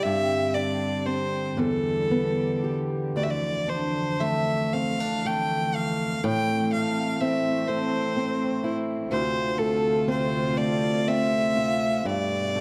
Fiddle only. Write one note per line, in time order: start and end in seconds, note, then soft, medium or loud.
0.03 0.56 E5 loud
0.54 1.07 D5 medium
1.05 1.60 C5 medium
1.59 2.77 A4 medium
3.17 3.25 D5 medium
3.23 3.32 E5 medium
3.30 3.70 D5 medium
3.69 4.22 C5 medium
4.21 4.74 E5 medium
4.73 5.28 F5 medium
5.26 5.77 G5 medium
5.75 6.25 F5 medium
6.24 6.72 G5 loud
6.72 7.22 F5 medium
7.21 7.69 E5 medium
7.67 8.75 C5 medium
9.11 9.59 C5 medium
9.58 10.08 A4 medium
10.10 10.59 C5 medium
10.57 11.09 D5 medium
11.07 12.08 E5 medium
12.06 12.61 D5 medium